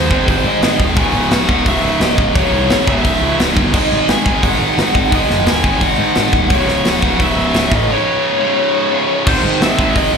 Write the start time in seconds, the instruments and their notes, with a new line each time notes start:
Already playing: distorted electric guitar D#3 G#3, lead electric guitar C5
0.11 picked electric bass G#1, distorted electric guitar G#2 D#3 G#3, kick
0.28 picked electric bass G#1, lead electric guitar C5, kick, open hi-hat
0.44 picked electric bass G#2, lead electric guitar D#5
0.61 picked electric bass G#1, distorted electric guitar G#2 D#3, snare, open hi-hat
0.65 distorted electric guitar G#3
0.79 picked electric bass D#1, kick
0.96 picked electric bass C#1, distorted electric guitar C#2 G#2 C#3, lead electric guitar G#5, kick, open hi-hat
1.13 picked electric bass C#1
1.31 picked electric bass C#1, lead electric guitar F#5, snare, open hi-hat
1.49 picked electric bass C#1, distorted electric guitar C#2 G#2 C#3, kick
1.66 picked electric bass C#1, lead electric guitar E5, kick, open hi-hat
1.82 picked electric bass C#1
2.00 picked electric bass C#1, distorted electric guitar C#2 G#2, lead electric guitar D#5, snare, open hi-hat
2.04 distorted electric guitar C#3
2.18 picked electric bass C#1, kick
2.35 picked electric bass C#1, distorted electric guitar C#2 G#2 C#3, lead electric guitar C#5, kick, open hi-hat
2.53 picked electric bass C2
2.70 picked electric bass G#1, snare, open hi-hat
2.87 picked electric bass C#1, distorted electric guitar C#2 G#2 C#3, lead electric guitar E5, kick
3.05 picked electric bass C#1, kick, open hi-hat
3.22 picked electric bass C#2
3.38 picked electric bass C#1, distorted electric guitar C#2 G#2 C#3, snare, open hi-hat
3.56 picked electric bass G1, kick
3.73 picked electric bass G#1, distorted electric guitar G#2 D#3 G#3, lead electric guitar D#5, kick, crash
3.92 picked electric bass G#1
4.08 picked electric bass G#1, lead electric guitar G#5, snare, open hi-hat
4.25 picked electric bass G#1, distorted electric guitar G#2 D#3 G#3, kick
4.43 picked electric bass G#1, lead electric guitar F#5, kick, open hi-hat
4.61 picked electric bass G#1
4.77 picked electric bass G#1, distorted electric guitar G#2 D#3 G#3, snare, open hi-hat
4.95 picked electric bass G#1, kick
5.12 picked electric bass G#1, distorted electric guitar G#2 D#3 G#3, lead electric guitar D#5, kick, open hi-hat
5.30 picked electric bass F#1, snare
5.46 picked electric bass D#2, lead electric guitar G#5, snare, open hi-hat
5.64 picked electric bass G#1, distorted electric guitar G#2 D#3 G#3, kick
5.81 picked electric bass G#1, lead electric guitar F#5, kick, open hi-hat
5.98 picked electric bass G#2
6.15 picked electric bass G#1, distorted electric guitar G#2 D#3 G#3, snare, open hi-hat
6.33 picked electric bass D#1, kick
6.50 picked electric bass C#1, distorted electric guitar C#2 G#2 C#3, lead electric guitar C#5, kick, open hi-hat
6.68 picked electric bass C#1, snare
6.85 picked electric bass C#1, lead electric guitar F#5, snare, open hi-hat
7.01 picked electric bass C#1, distorted electric guitar C#2 G#2 C#3, kick
7.20 picked electric bass C#1, lead electric guitar E5, kick, open hi-hat
7.37 picked electric bass C#1
7.54 picked electric bass C#1, distorted electric guitar C#2 G#2 C#3, snare, open hi-hat
7.71 picked electric bass A1, lead electric guitar D#5, kick
7.88 distorted electric guitar C#2 G#2 C#3, lead electric guitar C#5
8.40 distorted electric guitar C#2 G#2 C#3
8.92 distorted electric guitar C#2 G#2 C#3
9.26 picked electric bass G#1, distorted electric guitar G#2 D#3 G#3, lead electric guitar C5, kick, crash
9.43 picked electric bass G#1
9.61 picked electric bass G#1, lead electric guitar E5, snare, open hi-hat
9.78 picked electric bass G#1, distorted electric guitar G#2 D#3 G#3, kick
9.96 picked electric bass G#1, lead electric guitar D#5, kick, open hi-hat
10.12 picked electric bass G#1